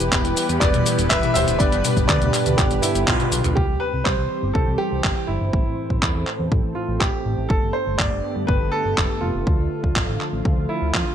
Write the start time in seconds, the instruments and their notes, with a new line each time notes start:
Already playing: analog polysynth E3 B3 E4 G4 B4, analog synth pad E3 G3 B3 G4 B4, grand piano G4 B4
0.00 analog synth bass E1, closed hi-hat, cabasa
0.12 analog synth bass E1, kick, clap, closed hi-hat, cabasa
0.25 analog synth bass E1, closed hi-hat, cabasa
0.37 open hi-hat, cabasa
0.49 analog synth bass E2, closed hi-hat, cabasa
0.60 analog synth bass E1, grand piano B4 D5, kick, clap, closed hi-hat, cabasa
0.74 analog synth bass E1, closed hi-hat, high tom, cabasa
0.86 open hi-hat, cabasa
0.98 analog synth bass E1, closed hi-hat, cabasa
1.09 analog synth bass D1, analog polysynth E3 B3 E4 G4 B4, grand piano B4 E5, kick, clap, closed hi-hat, cabasa
1.23 closed hi-hat, high tom, cabasa
1.34 analog synth bass D1, grand piano C5 E5, open hi-hat, cabasa
1.47 analog synth bass D1, closed hi-hat, cabasa
1.59 analog synth bass G1, analog polysynth G2 B3 D4 G4 B4, analog synth pad D3, grand piano B4 D5, kick, closed hi-hat, cabasa
1.72 analog synth bass G1, closed hi-hat, cabasa
1.85 open hi-hat, high tom, cabasa
1.97 analog synth bass G1, kick, closed hi-hat, cabasa
2.08 analog synth bass D2, grand piano B4 D5, kick, clap, closed hi-hat, cabasa
2.21 analog synth bass D2, closed hi-hat, high tom, cabasa
2.34 clap, open hi-hat, cabasa
2.46 analog synth bass D2, closed hi-hat, high tom, cabasa
2.57 analog synth bass G1, grand piano D4 G4, kick, clap, closed hi-hat, cabasa
2.71 analog synth bass G1, closed hi-hat, cabasa
2.82 grand piano E4, open hi-hat, cabasa
2.95 analog synth bass G1, closed hi-hat, cabasa
3.06 analog synth bass B1, analog polysynth G2 B3 D4 G4 B4, grand piano F4, kick, clap, closed hi-hat, high tom, cabasa
3.20 closed hi-hat, high tom, cabasa
3.32 analog synth bass B1, open hi-hat, cabasa
3.44 analog synth bass B1, closed hi-hat, mid tom, cabasa
3.55 analog synth bass C2, analog synth pad E3 G3 C4 G4 C5, grand piano G4, kick
3.69 analog synth bass C2
3.80 grand piano B4
3.94 analog synth bass C2
4.04 analog synth bass C2, grand piano C5, kick, clap
4.18 analog synth bass C2
4.43 analog synth bass G1
4.53 analog synth bass C2, grand piano A4, kick
4.67 analog synth bass C2
4.78 grand piano G4
4.92 analog synth bass C2
5.04 analog synth bass G1, kick, clap
5.27 analog synth bass G1, grand piano E4
5.41 analog synth bass G1
5.53 analog synth bass A1, analog polysynth A2 E4, analog synth pad A3 C4 A4, kick
5.66 analog synth bass A1
5.90 analog synth bass A1, kick
6.02 analog synth bass E2, kick, clap
6.15 analog synth bass E2
6.27 clap
6.39 analog synth bass E2
6.52 analog synth bass A1, kick
6.64 analog synth bass A1
6.75 grand piano F4
6.89 analog synth bass A1
7.00 analog synth bass A1, grand piano G4, kick, clap
7.26 analog synth bass A1
7.38 analog synth bass A1
7.49 analog synth bass G1, analog polysynth G2 B3 D4, analog synth pad D3 B3 G4 A4, grand piano A4, kick
7.62 analog synth bass G1
7.73 grand piano C5
7.87 analog synth bass G1
7.98 analog synth bass G1, grand piano D5, kick, clap
8.12 analog synth bass G1
8.36 analog synth bass G2
8.47 analog synth bass G1, grand piano B4, kick
8.61 analog synth bass G1
8.72 grand piano A4
8.85 analog synth bass G1
8.98 analog synth bass F1, kick, clap
9.21 analog synth bass F1, grand piano F4
9.34 analog synth bass F1
9.47 analog synth bass D2, analog polysynth D3 A3 D4 A4, analog synth pad F3 F4, kick
9.59 analog synth bass D2
9.84 analog synth bass D2, kick
9.96 analog synth bass A1, kick, clap
10.08 analog synth bass A1
10.21 clap
10.33 analog synth bass A1
10.45 analog synth bass D2, kick
10.57 analog synth bass D2
10.69 grand piano E4
10.82 analog synth bass D2
10.93 analog synth bass F2, grand piano F4, kick, clap